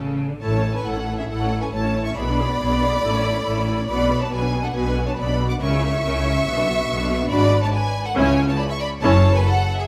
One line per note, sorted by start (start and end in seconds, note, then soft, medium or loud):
0.00 0.18 A1 medium
0.00 0.31 C#3 medium
0.00 0.20 A4 medium
0.00 0.19 A5 medium
0.31 0.42 D3 medium
0.41 0.81 A1 medium
0.41 0.80 A2 medium
0.41 0.52 E4 medium
0.41 0.52 A4 medium
0.41 0.73 C#5 medium
0.41 0.72 A5 loud
0.53 0.64 C#4 medium
0.53 0.64 C#5 medium
0.63 0.74 E4 medium
0.63 0.74 A4 medium
0.74 0.85 C#4 medium
0.74 0.86 B4 medium
0.74 0.85 C#5 medium
0.74 0.86 G#5 medium
0.85 1.24 A1 medium
0.85 1.24 A2 medium
0.85 0.96 E4 medium
0.85 0.96 A4 medium
0.85 1.19 A4 medium
0.85 1.18 F#5 loud
0.97 1.08 C#4 medium
0.97 1.08 C#5 medium
1.08 1.18 E4 medium
1.08 1.19 A4 medium
1.17 1.30 C#4 medium
1.17 1.29 G#4 medium
1.17 1.30 C#5 medium
1.17 1.29 E5 medium
1.28 1.67 A1 medium
1.28 1.67 A2 medium
1.28 1.40 E4 medium
1.28 1.62 A4 medium
1.28 1.40 A4 medium
1.28 1.61 F#5 loud
1.41 1.52 C#4 medium
1.41 1.52 C#5 medium
1.52 1.62 E4 medium
1.52 1.63 A4 medium
1.61 1.73 C#4 medium
1.61 1.73 B4 medium
1.61 1.73 C#5 medium
1.61 1.66 G#5 medium
1.72 2.11 A1 medium
1.72 2.11 A2 medium
1.72 1.83 E4 medium
1.72 1.83 A4 medium
1.72 2.05 C#5 medium
1.72 2.04 A5 loud
1.83 1.94 C#4 medium
1.83 1.94 C#5 medium
1.94 2.05 E4 medium
1.94 2.05 A4 medium
2.04 2.16 C#4 medium
2.04 2.16 C#5 medium
2.04 2.16 E5 medium
2.04 2.09 C#6 loud
2.15 2.55 B1 medium
2.15 2.55 B2 medium
2.15 2.27 B3 medium
2.15 2.27 G#4 medium
2.15 3.87 D5 loud
2.15 3.84 B5 loud
2.27 2.38 D4 medium
2.27 2.39 B4 medium
2.39 2.50 B3 medium
2.39 2.50 G#4 medium
2.49 2.60 D4 medium
2.49 2.60 B4 medium
2.60 2.98 B1 medium
2.60 2.98 B2 medium
2.60 2.70 B3 medium
2.60 2.70 G#4 medium
2.71 2.82 D4 medium
2.71 2.82 B4 medium
2.82 2.92 B3 medium
2.82 2.92 G#4 medium
2.92 3.03 D4 medium
2.92 3.03 B4 medium
3.02 3.40 A1 medium
3.02 3.41 A2 medium
3.02 3.12 E4 medium
3.02 3.12 A4 medium
3.13 3.24 C#4 medium
3.13 3.24 C#5 medium
3.23 3.34 E4 medium
3.23 3.34 A4 medium
3.34 3.45 C#4 medium
3.34 3.45 C#5 medium
3.45 3.83 A1 medium
3.45 3.84 A2 medium
3.45 3.55 E4 medium
3.45 3.55 A4 medium
3.55 3.66 C#4 medium
3.55 3.66 C#5 medium
3.66 3.77 E4 medium
3.66 3.77 A4 medium
3.77 3.88 C#4 medium
3.77 3.88 C#5 medium
3.88 4.26 B1 loud
3.88 4.27 B2 medium
3.88 3.98 B3 medium
3.88 3.98 F#4 medium
3.88 4.20 D5 loud
3.88 4.20 B5 loud
3.98 4.10 D4 medium
3.98 4.09 B4 medium
4.09 4.20 B3 medium
4.09 4.20 F#4 medium
4.20 4.31 D4 medium
4.20 4.31 B4 medium
4.20 4.31 C#5 medium
4.20 4.32 A5 loud
4.31 4.70 B1 medium
4.31 4.69 B2 medium
4.31 4.41 B3 medium
4.31 4.41 F#4 medium
4.31 4.62 B4 medium
4.31 4.63 G#5 loud
4.42 4.53 D4 medium
4.42 4.53 B4 medium
4.53 4.63 B3 medium
4.53 4.64 F#4 medium
4.63 4.74 D4 medium
4.63 4.68 A4 medium
4.63 4.74 B4 medium
4.63 4.74 F#5 medium
4.73 5.12 B1 medium
4.73 5.12 B2 medium
4.73 4.84 B3 medium
4.73 4.84 F#4 medium
4.73 5.06 B4 loud
4.73 5.06 G#5 loud
4.85 4.96 D4 medium
4.85 4.96 B4 medium
4.97 5.07 B3 medium
4.97 5.07 F#4 medium
5.06 5.18 D4 medium
5.06 5.18 B4 medium
5.06 5.11 C#5 medium
5.06 5.17 A5 medium
5.16 5.56 B1 medium
5.16 5.56 B2 medium
5.16 5.28 B3 medium
5.16 5.28 F#4 medium
5.16 5.49 D5 medium
5.16 5.49 B5 loud
5.28 5.39 D4 medium
5.28 5.39 B4 medium
5.39 5.50 B3 medium
5.39 5.50 F#4 medium
5.48 5.61 D4 medium
5.48 5.61 B4 medium
5.48 5.54 F#5 medium
5.48 5.53 D6 loud
5.59 5.99 C#2 medium
5.59 5.99 C#3 loud
5.59 5.70 C#4 medium
5.59 5.70 A#4 medium
5.59 7.28 E5 loud
5.59 7.27 C#6 loud
5.71 5.82 E4 medium
5.71 5.82 C#5 medium
5.82 5.93 C#4 medium
5.82 5.93 A#4 medium
5.93 6.04 E4 medium
5.93 6.04 C#5 medium
6.04 6.41 C#2 medium
6.04 6.41 C#3 medium
6.04 6.14 C#4 medium
6.04 6.14 A#4 medium
6.15 6.25 E4 medium
6.15 6.25 C#5 medium
6.25 6.36 C#4 medium
6.25 6.36 A#4 medium
6.36 6.46 E4 medium
6.36 6.46 C#5 medium
6.46 6.83 B1 medium
6.46 6.84 B2 medium
6.46 6.56 B3 medium
6.46 6.56 F#4 medium
6.56 6.67 D4 medium
6.56 6.67 B4 medium
6.67 6.78 B3 medium
6.67 6.78 F#4 medium
6.78 6.89 D4 medium
6.78 6.89 B4 medium
6.88 7.26 B1 loud
6.88 7.26 B2 loud
6.88 6.99 B3 medium
6.88 6.99 F#4 medium
6.99 7.10 D4 medium
6.99 7.10 B4 medium
7.09 7.20 B3 medium
7.09 7.20 F#4 medium
7.20 7.29 D4 medium
7.20 7.31 B4 medium
7.30 7.67 G#1 loud
7.30 7.67 G#2 loud
7.30 7.51 D4 medium
7.30 7.51 F#4 loud
7.30 7.63 D5 loud
7.30 7.62 B5 loud
7.62 7.67 C#5 loud
7.62 7.73 A5 loud
7.74 8.05 B4 loud
7.74 8.05 G#5 loud
8.05 8.09 A4 medium
8.05 8.17 F#5 loud
8.15 8.53 C#2 loud
8.15 8.52 C#3 loud
8.15 8.36 C#4 loud
8.15 8.36 E4 loud
8.15 8.47 C#5 loud
8.15 8.48 G#5 loud
8.48 8.52 C#5 medium
8.48 8.60 A5 loud
8.59 8.63 D5 loud
8.59 8.71 B5 loud
8.70 8.74 E5 medium
8.70 8.81 C#6 loud
8.80 8.88 D5 loud
8.80 8.88 B5 loud
9.02 9.38 F#1 loud
9.02 9.38 F#2 loud
9.02 9.23 C#4 loud
9.02 9.23 E4 loud
9.02 9.34 C#5 loud
9.02 9.34 A5 loud
9.35 9.46 B4 loud
9.35 9.39 G#5 loud
9.46 9.78 A4 loud
9.46 9.77 F#5 loud
9.78 9.83 G#4 medium
9.78 9.87 E5 loud